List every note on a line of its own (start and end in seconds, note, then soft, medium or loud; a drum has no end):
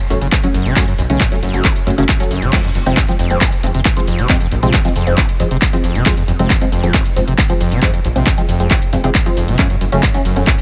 0.10 0.17 F#1 medium
0.10 0.14 F#2 loud
0.10 0.18 F#3 medium
0.10 0.18 A3 medium
0.10 0.18 C#4 medium
0.10 open hi-hat loud
0.21 0.28 F#1 medium
0.21 0.28 C#3 medium
0.21 closed hi-hat medium
0.32 kick loud
0.32 clap loud
0.32 closed hi-hat medium
0.43 0.47 F#3 loud
0.43 0.55 F#3 medium
0.43 0.55 A3 medium
0.43 0.55 C#4 loud
0.43 closed hi-hat medium
0.54 0.61 F#1 loud
0.54 0.67 F#2 medium
0.54 open hi-hat loud
0.66 0.72 F#1 medium
0.66 0.75 C#3 medium
0.66 closed hi-hat medium
0.76 0.86 F#2 medium
0.76 0.84 F#3 medium
0.76 0.84 A3 medium
0.76 0.84 C#4 loud
0.76 kick loud
0.76 clap loud
0.76 closed hi-hat medium
0.88 0.94 F#2 medium
0.88 closed hi-hat medium
0.98 1.05 B1 medium
0.98 1.02 F#2 medium
0.98 open hi-hat loud
1.10 1.16 B1 medium
1.10 1.22 C#3 medium
1.10 1.21 F#3 medium
1.10 1.21 A3 medium
1.10 1.21 C#4 loud
1.10 closed hi-hat medium
1.21 1.27 F#2 medium
1.21 kick loud
1.21 clap loud
1.21 closed hi-hat medium
1.32 1.35 F#3 loud
1.32 1.39 F#3 medium
1.32 1.39 A3 medium
1.32 1.39 C#4 loud
1.32 closed hi-hat medium
1.43 1.50 F#1 loud
1.43 1.66 F#2 medium
1.43 open hi-hat loud
1.54 1.61 F#1 medium
1.54 1.61 F#3 medium
1.54 1.61 A3 medium
1.54 1.61 C#4 medium
1.54 closed hi-hat medium
1.65 1.74 F#1 medium
1.65 kick loud
1.65 clap loud
1.65 open hi-hat medium
1.76 closed hi-hat medium
1.87 1.94 F#1 medium
1.87 1.91 F#2 loud
1.87 1.94 F#3 medium
1.87 1.94 A3 medium
1.87 1.94 C#4 medium
1.87 open hi-hat loud
1.98 2.05 F#1 medium
1.98 2.04 C#3 medium
1.98 2.05 F#3 loud
1.98 2.05 A3 medium
1.98 2.05 C#4 loud
1.98 closed hi-hat medium
2.09 kick loud
2.09 clap loud
2.09 closed hi-hat medium
2.20 2.32 F#3 medium
2.20 2.24 F#3 loud
2.20 2.32 A3 medium
2.20 2.32 C#4 loud
2.20 closed hi-hat medium
2.31 2.38 F#1 medium
2.31 2.44 F#2 medium
2.31 open hi-hat loud
2.42 2.49 F#1 medium
2.42 2.51 C#3 medium
2.42 closed hi-hat medium
2.53 2.62 F2 medium
2.53 2.60 F3 medium
2.53 2.60 G#3 medium
2.53 2.60 C4 loud
2.53 kick loud
2.53 clap loud
2.53 closed hi-hat medium
2.53 crash medium
2.64 2.70 F2 medium
2.64 closed hi-hat medium
2.75 2.82 F1 medium
2.75 2.79 F2 medium
2.75 open hi-hat loud
2.86 2.93 F1 medium
2.86 2.99 C3 medium
2.86 2.98 F3 medium
2.86 2.98 G#3 medium
2.86 2.98 C4 loud
2.86 closed hi-hat medium
2.97 3.03 F2 medium
2.97 kick loud
2.97 clap loud
2.97 closed hi-hat medium
3.08 3.16 F3 medium
3.08 3.12 F3 loud
3.08 3.16 G#3 medium
3.08 3.16 C4 loud
3.08 closed hi-hat medium
3.19 3.26 F1 loud
3.19 3.43 F2 medium
3.19 open hi-hat loud
3.30 3.37 D#1 medium
3.30 3.38 F3 medium
3.30 3.38 G#3 medium
3.30 3.38 C4 medium
3.30 closed hi-hat medium
3.41 3.51 F1 medium
3.41 kick loud
3.41 clap loud
3.41 closed hi-hat medium
3.52 closed hi-hat medium
3.63 3.70 F1 loud
3.63 3.67 F2 loud
3.63 3.71 F3 medium
3.63 3.71 G#3 medium
3.63 3.71 C4 medium
3.63 open hi-hat loud
3.74 3.81 F1 medium
3.74 3.81 C3 medium
3.74 closed hi-hat medium
3.85 kick loud
3.85 clap loud
3.85 closed hi-hat medium
3.97 4.08 F3 medium
3.97 4.00 F3 loud
3.97 4.08 G#3 medium
3.97 4.08 C4 loud
3.97 closed hi-hat medium
4.07 4.14 F1 loud
4.07 4.20 F2 medium
4.07 open hi-hat loud
4.19 4.25 F1 medium
4.19 4.28 C3 medium
4.19 closed hi-hat medium
4.29 4.39 F2 medium
4.29 4.37 F3 medium
4.29 4.37 G#3 medium
4.29 4.37 C4 loud
4.29 kick loud
4.29 clap loud
4.29 closed hi-hat medium
4.41 4.47 F2 medium
4.41 closed hi-hat medium
4.51 4.58 A#1 medium
4.51 4.55 F2 medium
4.51 open hi-hat loud
4.63 4.70 A#1 medium
4.63 4.75 C3 medium
4.63 4.74 F3 medium
4.63 4.74 G#3 medium
4.63 4.74 C4 loud
4.63 closed hi-hat medium
4.74 4.80 F2 medium
4.74 kick loud
4.74 clap loud
4.74 closed hi-hat medium
4.85 4.88 F3 loud
4.85 4.92 F3 medium
4.85 4.92 G#3 medium
4.85 4.92 C4 loud
4.85 closed hi-hat medium
4.96 5.03 F1 medium
4.96 5.19 F2 medium
4.96 open hi-hat loud
5.07 5.14 F1 medium
5.07 5.14 F3 medium
5.07 5.14 G#3 medium
5.07 5.14 C4 medium
5.07 closed hi-hat medium
5.18 5.27 F1 medium
5.18 kick loud
5.18 clap loud
5.18 closed hi-hat medium
5.29 closed hi-hat medium
5.40 5.47 F1 loud
5.40 5.44 F2 loud
5.40 5.47 F3 medium
5.40 5.47 G#3 medium
5.40 5.47 C4 medium
5.40 open hi-hat loud
5.51 5.58 F1 medium
5.51 5.57 C3 medium
5.51 closed hi-hat medium
5.62 kick loud
5.62 clap loud
5.62 closed hi-hat medium
5.73 5.85 F3 medium
5.73 5.77 F3 loud
5.73 5.85 G#3 medium
5.73 5.85 C4 loud
5.73 closed hi-hat medium
5.84 5.91 F1 medium
5.84 5.97 F2 medium
5.84 open hi-hat loud
5.95 6.02 F1 medium
5.95 6.04 C3 medium
5.95 closed hi-hat medium
6.06 6.15 F2 medium
6.06 6.13 F3 loud
6.06 6.13 G#3 medium
6.06 6.13 C4 loud
6.06 kick loud
6.06 clap loud
6.06 closed hi-hat medium
6.17 6.23 F2 medium
6.17 closed hi-hat medium
6.28 6.35 F1 medium
6.28 6.32 F2 medium
6.28 open hi-hat loud
6.39 6.46 F1 medium
6.39 6.52 C3 medium
6.39 6.51 F3 loud
6.39 6.51 G#3 medium
6.39 6.51 C4 loud
6.39 closed hi-hat medium
6.50 6.56 F2 medium
6.50 kick loud
6.50 clap loud
6.50 closed hi-hat medium
6.61 6.65 F3 loud
6.61 6.69 F3 medium
6.61 6.69 G#3 medium
6.61 6.69 C4 loud
6.61 closed hi-hat medium
6.72 6.79 F1 loud
6.72 6.96 F2 medium
6.72 open hi-hat loud
6.83 6.90 D#1 medium
6.83 6.91 F3 medium
6.83 6.91 G#3 medium
6.83 6.91 C4 medium
6.83 closed hi-hat medium
6.94 7.04 F1 medium
6.94 kick loud
6.94 clap loud
6.94 closed hi-hat medium
7.06 closed hi-hat medium
7.16 7.23 F1 loud
7.16 7.20 F2 loud
7.16 7.24 F3 medium
7.16 7.24 G#3 medium
7.16 7.24 C4 medium
7.16 open hi-hat loud
7.27 7.34 F1 medium
7.27 7.34 C3 medium
7.27 closed hi-hat medium
7.38 kick loud
7.38 clap loud
7.38 closed hi-hat medium
7.50 7.61 F3 medium
7.50 7.53 F3 loud
7.50 7.61 G#3 medium
7.50 7.61 C4 loud
7.50 closed hi-hat medium
7.60 7.67 F1 medium
7.60 7.73 F2 medium
7.60 open hi-hat loud
7.72 7.78 F1 medium
7.72 7.81 C3 medium
7.72 closed hi-hat medium
7.82 7.92 F2 medium
7.82 7.90 F3 loud
7.82 7.90 G#3 medium
7.82 7.90 C4 loud
7.82 kick loud
7.82 clap loud
7.82 closed hi-hat medium
7.94 8.00 F2 medium
7.94 closed hi-hat medium
8.04 8.11 A#1 medium
8.04 8.08 F2 medium
8.04 open hi-hat loud
8.16 8.22 A#1 medium
8.16 8.28 C3 medium
8.16 8.27 F3 medium
8.16 8.27 G#3 medium
8.16 8.27 C4 loud
8.16 closed hi-hat medium
8.27 8.33 F2 medium
8.27 kick loud
8.27 clap loud
8.27 closed hi-hat medium
8.38 8.45 F3 medium
8.38 8.41 F3 loud
8.38 8.45 G#3 medium
8.38 8.45 C4 loud
8.38 closed hi-hat medium
8.49 8.55 F1 medium
8.49 8.72 F2 medium
8.49 open hi-hat loud
8.60 8.67 F1 medium
8.60 8.67 F3 medium
8.60 8.67 G#3 medium
8.60 8.67 C4 medium
8.60 closed hi-hat medium
8.71 8.80 F1 medium
8.71 kick loud
8.71 clap loud
8.71 closed hi-hat medium
8.82 closed hi-hat medium
8.93 9.00 F1 loud
8.93 8.96 F2 loud
8.93 9.00 F3 medium
8.93 9.00 G#3 medium
8.93 9.00 C4 medium
8.93 open hi-hat loud
9.04 9.11 F1 medium
9.04 9.10 C3 medium
9.04 9.11 F3 loud
9.04 9.11 G#3 medium
9.04 9.11 C4 loud
9.04 closed hi-hat medium
9.15 kick loud
9.15 clap loud
9.15 closed hi-hat medium
9.26 9.30 F3 loud
9.26 9.38 F3 medium
9.26 9.38 G#3 medium
9.26 9.38 C4 loud
9.26 closed hi-hat medium
9.37 9.44 F1 loud
9.37 9.50 F2 medium
9.37 open hi-hat loud
9.48 9.55 F1 medium
9.48 9.57 C3 medium
9.48 closed hi-hat medium
9.59 9.68 F#2 medium
9.59 9.66 F#3 medium
9.59 9.66 A3 medium
9.59 9.66 C#4 loud
9.59 kick loud
9.59 clap loud
9.59 closed hi-hat medium
9.70 9.76 F#2 medium
9.70 closed hi-hat medium
9.81 9.88 F#1 medium
9.81 9.85 F#2 medium
9.81 open hi-hat loud
9.92 9.99 F#1 medium
9.92 10.05 C#3 medium
9.92 10.04 F#3 medium
9.92 10.04 A3 medium
9.92 10.04 C#4 loud
9.92 closed hi-hat medium
10.03 10.09 F#2 medium
10.03 kick loud
10.03 clap loud
10.03 closed hi-hat medium
10.14 10.18 F#3 loud
10.14 10.21 F#3 medium
10.14 10.21 A3 medium
10.14 10.21 C#4 loud
10.14 closed hi-hat medium
10.25 10.32 F#1 loud
10.25 10.49 F#2 medium
10.25 open hi-hat loud
10.36 10.43 E1 medium
10.36 10.44 F#3 medium
10.36 10.44 A3 medium
10.36 10.44 C#4 medium
10.36 closed hi-hat medium
10.47 10.56 F#1 medium
10.47 kick loud
10.47 clap loud
10.47 closed hi-hat medium
10.58 closed hi-hat medium